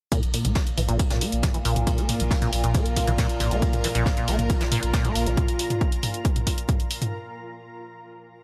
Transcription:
0.12 synth drone A#2, acid bass A#2, ambient pad F4, kick, closed hi-hat, mid tom, ride
0.23 sub bass A#1, ambient pad A#4, closed hi-hat
0.34 acid bass A#2, open hi-hat, ride
0.45 sub bass A#1, acid bass A#3, closed hi-hat, mid tom
0.55 kick, snare, ride
0.67 acid bass A#2, ambient pad A#5, closed hi-hat
0.77 sub bass A#1, acid bass E3, mid tom, open hi-hat, ride
0.89 sub bass A#1, acid bass A#2, closed hi-hat
0.99 kick, closed hi-hat, ride
1.10 sub bass A#1, acid bass A#2, snare, closed hi-hat, mid tom
1.21 acid bass A#3, open hi-hat, ride
1.32 sub bass A#1, closed hi-hat
1.43 acid bass A#2, kick, snare, closed hi-hat, mid tom, ride
1.54 acid bass E3, closed hi-hat
1.65 sub bass A#1, acid bass A#2, open hi-hat, ride
1.76 sub bass A#1, closed hi-hat, mid tom
1.87 acid bass A#2, kick, closed hi-hat, ride
1.98 sub bass A#1, acid bass A#3, closed hi-hat
2.08 mid tom, open hi-hat, ride
2.20 sub bass A#1, acid bass A#2, closed hi-hat
2.31 acid bass E3, kick, snare, ride
2.42 acid bass A#2, snare, closed hi-hat, mid tom
2.52 sub bass A#1, open hi-hat, ride
2.64 sub bass A#1, acid bass A#2, closed hi-hat
2.74 acid bass A#3, kick, closed hi-hat, mid tom, ride
2.86 sub bass A#1, closed hi-hat
2.96 acid bass A#2, kick, open hi-hat, ride
3.07 sub bass A#1, acid bass E3, closed hi-hat, mid tom
3.18 acid bass A#2, kick, snare, closed hi-hat, ride
3.29 closed hi-hat
3.40 sub bass A#1, acid bass A#2, mid tom, open hi-hat, ride
3.51 sub bass A#1, acid bass A#3, closed hi-hat
3.62 kick, closed hi-hat, ride
3.73 sub bass A#1, acid bass A#2, closed hi-hat, mid tom
3.84 acid bass E3, open hi-hat, ride
3.95 sub bass A#1, acid bass A#2, closed hi-hat
4.06 kick, snare, mid tom, ride
4.17 acid bass A#2, closed hi-hat
4.28 sub bass A#1, acid bass A#3, open hi-hat, ride
4.39 sub bass A#1, closed hi-hat, mid tom
4.49 acid bass A#2, kick, closed hi-hat, ride
4.61 sub bass A#1, acid bass E3, snare, closed hi-hat
4.72 acid bass A#2, mid tom, open hi-hat, ride
4.83 sub bass A#1, closed hi-hat
4.93 acid bass A#2, kick, snare, closed hi-hat, ride
5.05 acid bass A#3, closed hi-hat, mid tom
5.15 sub bass A#1, open hi-hat, ride
5.26 sub bass A#1, acid bass A#2, closed hi-hat
5.37 kick, closed hi-hat, mid tom
5.48 closed hi-hat
5.59 open hi-hat
5.70 closed hi-hat, mid tom
5.81 kick, closed hi-hat
5.92 closed hi-hat
6.03 mid tom, open hi-hat
6.14 closed hi-hat
6.25 kick, closed hi-hat
6.36 closed hi-hat, mid tom
6.47 kick, open hi-hat
6.58 closed hi-hat
6.69 kick, closed hi-hat, mid tom
6.80 closed hi-hat
6.91 open hi-hat
7.02 closed hi-hat, mid tom

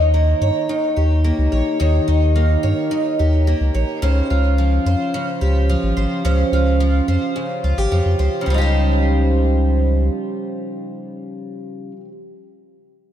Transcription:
Already playing: sub bass D#2, twelve-string acoustic guitar D#3 D#4 C#5
0.14 twelve-string acoustic guitar A#3
0.41 sub bass G2, twelve-string acoustic guitar C#5
0.69 twelve-string acoustic guitar D#3
0.97 sub bass D#2, twelve-string acoustic guitar G4
1.24 twelve-string acoustic guitar A#3
1.39 sub bass C#2
1.52 sub bass A#1, twelve-string acoustic guitar C#5
1.80 sub bass D#2, twelve-string acoustic guitar D#3 C#5
2.08 sub bass D#2, twelve-string acoustic guitar D#4
2.36 twelve-string acoustic guitar A#3
2.63 sub bass G2, twelve-string acoustic guitar C#5
2.91 twelve-string acoustic guitar D#3
3.19 sub bass D#2, twelve-string acoustic guitar G4
3.47 twelve-string acoustic guitar A#3
3.61 sub bass C#2
3.75 sub bass A#1, twelve-string acoustic guitar C#5
4.02 sub bass C#2, twelve-string acoustic guitar C#3 C5
4.30 sub bass C#2, twelve-string acoustic guitar F4
4.58 twelve-string acoustic guitar F3
4.86 sub bass F2, twelve-string acoustic guitar C5
5.14 twelve-string acoustic guitar C#3
5.41 sub bass C#2, twelve-string acoustic guitar G4
5.69 twelve-string acoustic guitar F3
5.83 sub bass G#1
5.97 sub bass G#1, twelve-string acoustic guitar C5
6.25 sub bass C#2, twelve-string acoustic guitar C#3 C5
6.52 sub bass C#2, twelve-string acoustic guitar F4
6.80 twelve-string acoustic guitar F3
7.08 sub bass F2, twelve-string acoustic guitar C5
7.36 twelve-string acoustic guitar C#3
7.64 sub bass C#2, twelve-string acoustic guitar F4
7.78 sub bass G#1, twelve-string acoustic guitar G4
7.92 sub bass F2, twelve-string acoustic guitar F3
8.06 sub bass F2
8.19 sub bass C#2, twelve-string acoustic guitar C5
8.41 twelve-string acoustic guitar C#3
8.46 sub bass C#2, twelve-string acoustic guitar G3
8.50 twelve-string acoustic guitar F3
8.54 twelve-string acoustic guitar D#4 G4
8.61 twelve-string acoustic guitar C5

